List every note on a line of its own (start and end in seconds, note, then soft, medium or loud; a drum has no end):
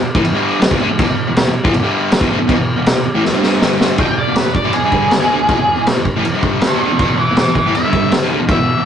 0.05 muted distorted electric guitar stroke medium
0.15 0.24 A2 medium
0.15 0.24 E3 loud
0.15 kick loud
0.24 0.32 E2 medium
0.24 0.33 B2 medium
0.24 crash medium
0.33 0.61 G2 loud
0.33 0.61 D3 loud
0.33 0.62 G3 loud
0.61 muted distorted electric guitar stroke medium
0.61 snare loud
0.61 crash medium
0.71 0.80 E2 medium
0.71 0.80 B2 medium
0.71 kick loud
0.80 0.89 D3 medium
0.80 0.89 A3 medium
0.90 0.97 E2 medium
0.90 0.99 B2 medium
0.98 1.07 E2 loud
0.98 1.08 B2 loud
0.98 kick loud
0.98 crash medium
1.10 1.24 E2 medium
1.10 1.24 B2 medium
1.27 1.42 E2 medium
1.27 1.42 B2 medium
1.36 snare loud
1.36 crash medium
1.47 1.54 E2 medium
1.47 1.56 B2 medium
1.55 muted distorted electric guitar stroke medium
1.64 1.73 A2 medium
1.64 1.73 E3 medium
1.64 kick loud
1.73 1.82 E2 medium
1.73 1.83 B2 medium
1.73 crash medium
1.82 2.10 G2 medium
1.82 2.11 D3 loud
1.82 2.11 G3 loud
2.12 muted distorted electric guitar stroke medium
2.12 snare loud
2.12 crash medium
2.20 2.29 E2 medium
2.20 2.29 B2 loud
2.20 kick loud
2.30 2.39 D3 medium
2.30 2.39 A3 loud
2.39 2.47 E2 medium
2.39 2.47 B2 medium
2.48 2.57 E2 loud
2.48 2.57 B2 loud
2.48 kick loud
2.48 crash medium
2.58 2.73 E2 medium
2.58 2.73 B2 medium
2.76 2.91 E2 medium
2.76 2.92 B2 medium
2.86 snare loud
2.86 crash medium
2.96 3.05 E2 medium
2.96 3.05 B2 medium
3.06 muted distorted electric guitar stroke medium
3.14 3.23 A2 loud
3.14 3.24 E3 loud
3.25 3.33 E2 medium
3.25 3.33 B2 medium
3.25 snare medium
3.33 3.60 G2 medium
3.33 3.61 D3 loud
3.33 3.61 G3 medium
3.43 snare medium
3.62 3.97 G2 medium
3.62 3.98 D3 loud
3.62 3.99 G3 loud
3.62 snare loud
3.81 snare loud
3.98 4.07 E2 medium
3.98 4.07 B2 medium
3.98 4.17 G5 medium
3.98 kick loud
3.98 crash medium
4.08 4.23 E2 medium
4.08 4.23 B2 medium
4.19 4.36 D5 medium
4.27 4.42 E2 medium
4.27 4.42 B2 medium
4.36 4.54 B4 medium
4.36 snare loud
4.36 crash medium
4.45 4.54 E2 medium
4.45 4.55 B2 medium
4.54 4.73 D5 medium
4.54 muted distorted electric guitar stroke medium
4.54 kick medium
4.64 4.73 A2 medium
4.64 4.73 E3 medium
4.73 4.83 E2 medium
4.73 4.83 B2 medium
4.73 5.82 G#4 loud
4.73 crash medium
4.84 5.11 G2 loud
4.84 5.11 D3 loud
4.84 5.12 G3 loud
4.92 kick loud
5.11 muted distorted electric guitar stroke medium
5.11 snare loud
5.11 crash medium
5.20 5.29 E2 medium
5.20 5.30 B2 medium
5.30 5.39 D3 medium
5.30 5.39 A3 loud
5.40 5.46 E2 medium
5.40 5.48 B2 medium
5.47 5.56 E2 loud
5.47 5.57 B2 loud
5.47 kick loud
5.47 crash medium
5.58 5.73 E2 medium
5.58 5.73 B2 medium
5.76 5.91 E2 medium
5.76 5.91 B2 medium
5.87 snare loud
5.87 crash medium
5.96 6.05 E2 medium
5.96 6.05 B2 medium
6.05 muted distorted electric guitar stroke medium
6.05 kick medium
6.16 6.24 A2 medium
6.16 6.24 E3 loud
6.25 6.33 E2 medium
6.25 6.34 B2 medium
6.25 crash medium
6.34 6.61 G2 medium
6.34 6.61 D3 medium
6.34 6.62 G3 medium
6.43 kick loud
6.61 6.78 B4 medium
6.61 6.79 D5 medium
6.61 muted distorted electric guitar stroke medium
6.61 snare loud
6.61 crash medium
6.73 6.81 E2 medium
6.73 6.81 B2 loud
6.79 6.97 B4 medium
6.79 6.98 D5 medium
6.83 6.90 D3 medium
6.83 6.90 A3 medium
6.92 7.00 E2 medium
6.92 7.00 B2 medium
6.98 7.09 E2 loud
6.98 7.09 B2 loud
6.98 7.16 B4 medium
6.98 7.17 D5 medium
6.98 kick loud
6.98 crash medium
7.13 7.25 E2 medium
7.13 7.25 B2 medium
7.17 7.35 B4 medium
7.17 7.36 E5 medium
7.31 7.44 E2 medium
7.31 7.44 B2 medium
7.37 7.54 B4 medium
7.37 7.55 E5 medium
7.37 snare loud
7.37 crash medium
7.48 7.55 E2 medium
7.48 7.56 B2 medium
7.55 7.73 B4 medium
7.55 7.74 E5 loud
7.55 muted distorted electric guitar stroke medium
7.55 kick medium
7.66 7.74 A2 medium
7.66 7.74 E3 medium
7.75 7.83 E2 medium
7.75 7.84 B2 medium
7.75 8.11 E5 loud
7.75 crash medium
7.84 8.11 G2 medium
7.84 8.11 D3 loud
7.84 8.12 G3 loud
7.93 kick medium
8.12 muted distorted electric guitar stroke medium
8.12 snare loud
8.12 crash medium
8.23 8.30 E2 medium
8.23 8.30 B2 loud
8.31 8.39 D3 medium
8.31 8.40 A3 loud
8.40 8.48 E2 medium
8.40 8.49 B2 medium
8.49 8.58 E2 loud
8.49 8.58 B2 loud
8.49 8.85 E5 loud
8.49 kick loud
8.49 crash medium
8.59 8.73 E2 medium
8.59 8.73 B2 medium
8.78 8.85 E2 medium
8.78 8.85 B2 medium